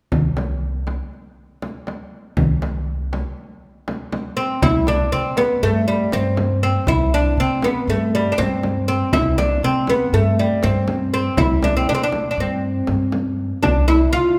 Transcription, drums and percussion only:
0.12 frame drum, darbuka dum
0.37 darbuka tek, frame drum
0.87 darbuka tek, frame drum
1.13 darbuka ka
1.62 darbuka tek, frame drum
1.87 darbuka tek, frame drum
2.37 frame drum, darbuka dum
2.62 darbuka tek, frame drum
3.13 darbuka tek, frame drum
3.38 darbuka ka
3.88 darbuka tek, frame drum
4.12 darbuka tek, frame drum
4.62 frame drum
4.87 frame drum
5.37 frame drum
6.12 frame drum
6.37 frame drum
6.87 frame drum
7.62 frame drum
8.39 frame drum
8.63 frame drum
9.13 frame drum
9.38 frame drum
9.87 frame drum
10.63 frame drum
10.88 frame drum
11.37 frame drum
11.63 frame drum
12.12 frame drum
12.87 frame drum
13.12 frame drum
13.63 frame drum
13.89 frame drum

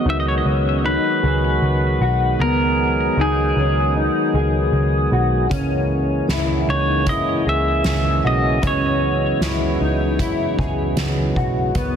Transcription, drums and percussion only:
5.51 kick, closed hi-hat
6.29 snare, closed hi-hat
7.07 kick, closed hi-hat
7.84 snare, closed hi-hat
8.63 kick, closed hi-hat
9.41 snare, closed hi-hat
10.19 kick, closed hi-hat
10.59 kick
10.97 snare, closed hi-hat
11.36 kick
11.75 kick, closed hi-hat

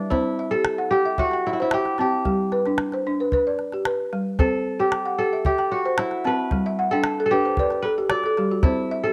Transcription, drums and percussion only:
0.11 calabash thump, calabash click
0.65 calabash click
1.18 calabash thump
1.31 calabash click
1.71 calabash click
1.86 calabash click
1.98 calabash click
2.25 calabash thump
2.52 calabash click
2.65 calabash click
2.78 calabash click
2.92 calabash click
3.32 calabash thump
3.59 calabash click
3.72 calabash click
3.85 calabash click
4.13 calabash click
4.39 calabash thump, calabash click
4.92 calabash click
5.45 calabash thump
5.58 calabash click
5.98 calabash click
6.11 calabash click
6.25 calabash click
6.51 calabash thump, calabash click
7.04 calabash click
7.57 calabash thump
7.71 calabash click
8.10 calabash click
8.24 calabash click
8.37 calabash click
8.63 calabash thump, calabash click

